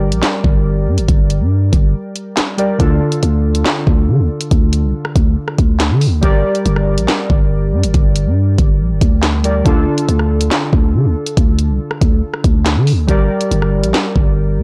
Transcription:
Already playing: 808-style bass G1, synth keys G3 G4 A#4 D5
0.12 808-style bass A#1, closed hi-hat
0.23 snare, clap, closed hi-hat
0.44 808-style bass G1, kick
0.87 808-style bass G2
0.98 808-style bass G1, closed hi-hat
1.08 808-style bass G1, kick, closed hi-hat
1.30 closed hi-hat
1.41 808-style bass G2
1.73 808-style bass G1, kick, closed hi-hat
2.16 closed hi-hat
2.37 snare, clap, closed hi-hat
2.57 synth keys G3 G4 A#4 D5, closed hi-hat
2.78 808-style bass D2, synth keys D3 D4 F4 A4, kick, closed hi-hat
3.12 closed hi-hat
3.23 808-style bass D2, closed hi-hat
3.55 closed hi-hat
3.66 snare, clap, closed hi-hat
3.87 808-style bass D2, kick
4.09 808-style bass D3
4.19 808-style bass D2
4.41 closed hi-hat
4.51 808-style bass D2, kick, closed hi-hat
4.73 closed hi-hat
4.83 808-style bass C2
5.05 cross-stick
5.16 808-style bass D2, kick, closed hi-hat
5.48 cross-stick
5.58 808-style bass D2, kick, closed hi-hat
5.80 snare, clap, closed hi-hat
5.91 808-style bass D3
6.01 open hi-hat
6.07 808-style bass D2
6.21 808-style bass G1, synth keys G3 G4 A#4 D5, kick, closed hi-hat
6.55 closed hi-hat
6.66 808-style bass G1, closed hi-hat
6.76 cross-stick
6.98 808-style bass A#1, closed hi-hat
7.08 snare, clap, closed hi-hat
7.30 808-style bass G1, kick
7.73 808-style bass G2
7.83 808-style bass G1, closed hi-hat
7.94 808-style bass G1, kick, closed hi-hat
8.16 closed hi-hat
8.26 808-style bass G2
8.58 808-style bass G1, kick, closed hi-hat
8.80 808-style bass A#1
8.91 808-style bass G1
9.01 808-style bass D2, kick, closed hi-hat
9.23 snare, clap, closed hi-hat
9.43 synth keys G3 G4 A#4 D5, closed hi-hat
9.64 808-style bass D2, synth keys D3 D4 F4 A4, kick, closed hi-hat
9.98 closed hi-hat
10.09 808-style bass D2, closed hi-hat
10.19 cross-stick
10.41 closed hi-hat
10.51 snare, clap, closed hi-hat
10.73 808-style bass D2, kick
10.94 808-style bass D3
11.05 808-style bass D2
11.26 closed hi-hat
11.37 808-style bass D2, kick, closed hi-hat
11.59 closed hi-hat
11.69 808-style bass C2
11.91 cross-stick
12.01 808-style bass D2, kick, closed hi-hat
12.34 cross-stick
12.44 808-style bass D2, kick, closed hi-hat
12.66 snare, clap, closed hi-hat
12.76 808-style bass D3
12.87 open hi-hat
12.92 808-style bass D2
13.07 808-style bass G1, synth keys G3 G4 A#4 D5, kick, closed hi-hat
13.41 closed hi-hat
13.51 808-style bass G1, closed hi-hat
13.62 cross-stick
13.84 808-style bass A#1, closed hi-hat
13.94 snare, clap, closed hi-hat
14.16 808-style bass G1, kick
14.59 808-style bass G2

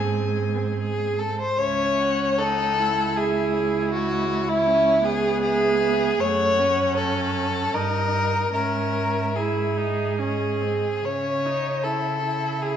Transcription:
Already playing: cello G#2, viola C4, violin G#4 G#5
0.78 violin G#4
1.19 violin A4
1.40 violin C5
1.58 cello C#2, viola C#4, violin C#5 E5
2.00 violin F#5
2.38 viola D#4, violin A4
2.79 viola E4
3.16 violin G#4 E5
3.54 violin C#5
3.92 violin F#4 C#5
4.48 violin E4
4.67 viola C#4
5.04 viola B3, violin G#4
5.42 violin G#4 E5
5.81 violin E5
6.20 cello F#2, viola A3, violin C#5 F#5
6.59 viola C#4
6.97 violin A4
7.74 cello G2, viola D#4, violin A#4 D#5
8.53 cello G#2, viola C#4, violin A#4 E5
9.36 viola E4, violin G#4
9.77 viola D#4
10.18 viola C#4, violin G#4 D#5
10.62 viola C4
11.04 cello C#3, viola C#4, violin C#5 E5
11.46 viola D#4
11.83 viola E4, violin A4 E5
12.24 viola E4
12.62 violin G#4

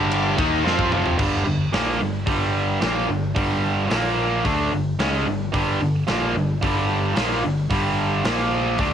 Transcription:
Already playing: picked electric bass G1, distorted electric guitar G2 D3 G3
0.11 ride
0.38 picked electric bass D#2, distorted electric guitar D#3 A#3 D#4, kick, ride
0.65 picked electric bass F2, distorted electric guitar F3 C4 F4, snare
0.79 kick
0.92 picked electric bass F1, distorted electric guitar F2 C3 F3, mid tom
1.06 floor tom
1.19 picked electric bass G1, distorted electric guitar G2 D3 G3, kick, crash
1.34 snare
1.47 picked electric bass G1, distorted electric guitar G2 D3
1.73 picked electric bass A#1, distorted electric guitar A#2 F3 A#3, snare, open hi-hat
2.00 picked electric bass G1, distorted electric guitar G2 D3
2.26 picked electric bass G1, distorted electric guitar G2 D3 G3, kick, open hi-hat
2.81 picked electric bass A#1, distorted electric guitar A#2 F3 A#3, snare, open hi-hat
3.09 picked electric bass G1, distorted electric guitar G2 D3
3.36 picked electric bass G1, distorted electric guitar G2 D3 G3, kick, open hi-hat
3.90 picked electric bass A#1, distorted electric guitar A#2 F3 A#3, snare, open hi-hat
4.45 picked electric bass D2, distorted electric guitar D3 A3 D4, kick, open hi-hat
4.72 picked electric bass G1, distorted electric guitar G2 D3
4.99 picked electric bass C#2, distorted electric guitar C#3 G#3 C#4, snare, open hi-hat
5.26 picked electric bass G1, distorted electric guitar G2 D3
5.53 picked electric bass G1, distorted electric guitar G2 D3 G3, kick, open hi-hat
5.81 picked electric bass G1, distorted electric guitar G2 D3
6.08 picked electric bass A#1, distorted electric guitar A#2 F3 A#3, snare, open hi-hat
6.35 picked electric bass G1, distorted electric guitar G2 D3
6.62 picked electric bass G1, distorted electric guitar G2 D3 G3, kick, open hi-hat
7.16 picked electric bass A#1, distorted electric guitar A#2 F3 A#3, snare, open hi-hat
7.44 picked electric bass G1, distorted electric guitar G2 D3
7.70 picked electric bass G1, distorted electric guitar G2 D3 G3, kick, open hi-hat
8.24 picked electric bass A#1, distorted electric guitar A#2 F3 A#3, snare, open hi-hat
8.78 picked electric bass D2, distorted electric guitar D3 A3 D4, kick, open hi-hat

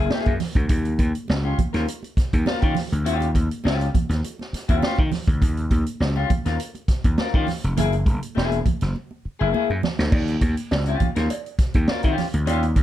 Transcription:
Already playing: clean electric guitar E4 G#4
0.10 clean electric guitar A#3 E4 G#4, snare, high conga
0.25 slap bass F#2, kick, closed hi-hat, muted conga
0.40 snare, open hi-hat, low conga
0.55 slap bass D2, kick, closed hi-hat
0.69 slap bass D#2, kick, closed hi-hat
0.85 closed hi-hat, muted conga
0.99 slap bass D#2, kick, closed hi-hat, high conga
1.15 closed hi-hat
1.28 slap bass C#2, snare, muted conga
1.44 clean electric guitar C#4 F4 G4, muted conga
1.59 kick, closed hi-hat, high conga, low conga
1.73 slap bass D#2, clean electric guitar C#4 F4 A#4, snare, closed hi-hat
1.88 closed hi-hat, muted conga
2.03 closed hi-hat, muted conga
2.17 muted slap bass stroke, kick, snare, closed hi-hat
2.33 slap bass D#2, kick, closed hi-hat
2.46 clean electric guitar C#4 F4 A#4, snare, muted conga, high conga
2.61 slap bass D#3, clean electric guitar C#4 F4 G4, kick, closed hi-hat
2.75 snare, open hi-hat, low conga
2.92 slap bass D2, closed hi-hat
3.05 slap bass D#2, clean electric guitar C#4 F4 G4, closed hi-hat
3.21 closed hi-hat, muted conga
3.35 slap bass D#2, kick, closed hi-hat, high conga
3.51 closed hi-hat
3.64 slap bass C#2, clean electric guitar C#4 F4 G4, snare, muted conga
3.80 closed hi-hat, muted conga
3.95 kick, closed hi-hat, high conga, low conga
4.09 slap bass D#2, snare, closed hi-hat
4.24 closed hi-hat, muted conga
4.39 snare, muted conga
4.53 muted slap bass stroke, snare, closed hi-hat
4.68 slap bass D#2, clean electric guitar C#4 F4 G4, kick, closed hi-hat
4.82 clean electric guitar C#4 F4 G4, snare, muted conga, high conga
4.99 slap bass D#3, kick
5.12 snare, open hi-hat, low conga
5.28 slap bass D2, kick, closed hi-hat
5.42 slap bass D#2, kick, closed hi-hat, muted conga
5.57 closed hi-hat
5.71 slap bass D#2, kick, closed hi-hat, high conga
5.86 closed hi-hat
6.00 slap bass C#2, snare
6.16 clean electric guitar C#4 F4 G4, muted conga
6.30 kick, closed hi-hat, high conga, low conga
6.46 slap bass D#2, clean electric guitar C#4 F4 A#4, snare, closed hi-hat
6.60 closed hi-hat
6.75 closed hi-hat, muted conga
6.88 muted slap bass stroke, kick, snare, closed hi-hat
7.04 slap bass D#2, kick, closed hi-hat
7.18 clean electric guitar C#4 F4 A#4, snare, muted conga, high conga
7.34 slap bass D#3, clean electric guitar C#4 F4 G4, kick
7.47 snare, open hi-hat, low conga
7.64 slap bass F1, closed hi-hat
7.77 slap bass F#1, clean electric guitar A#3 E4 G#4, closed hi-hat, muted conga, low conga
7.93 closed hi-hat, muted conga
8.06 slap bass F#1, kick, closed hi-hat, high conga
8.23 closed hi-hat
8.35 slap bass E1, clean electric guitar A#3 E4 G#4, snare, muted conga
8.52 closed hi-hat, muted conga
8.65 kick, closed hi-hat, high conga, low conga
8.81 slap bass F#1, snare, closed hi-hat
8.96 muted conga
9.11 muted conga
9.25 muted slap bass stroke
9.39 slap bass F#1, clean electric guitar A#3 E4 G#4, high conga
9.52 clean electric guitar A#3 E4 G#4, high conga
9.70 slap bass F#2, muted conga
9.83 snare, low conga
9.99 slap bass D2, snare
10.12 slap bass D#2, kick, crash, cowbell, muted conga
10.28 closed hi-hat
10.41 slap bass D#2, kick, closed hi-hat, high conga
10.57 closed hi-hat
10.71 slap bass C#2, snare, cowbell, muted conga
10.86 clean electric guitar C#4 F4 G4, closed hi-hat, muted conga
11.00 kick, closed hi-hat, high conga, low conga
11.15 slap bass D#2, clean electric guitar C#4 F4 A#4, snare, closed hi-hat
11.30 closed hi-hat, cowbell, muted conga
11.46 closed hi-hat
11.59 muted slap bass stroke, kick, snare, closed hi-hat
11.74 slap bass D#2, kick, closed hi-hat
11.88 clean electric guitar C#4 F4 A#4, snare, cowbell, high conga
12.03 slap bass D#3, clean electric guitar C#4 F4 G4, kick, closed hi-hat, muted conga
12.18 snare, open hi-hat, low conga
12.34 slap bass D2, closed hi-hat
12.46 slap bass D#2, clean electric guitar C#4 F4 G4, closed hi-hat, cowbell, muted conga
12.63 closed hi-hat, muted conga
12.76 slap bass D#2, kick, closed hi-hat, high conga

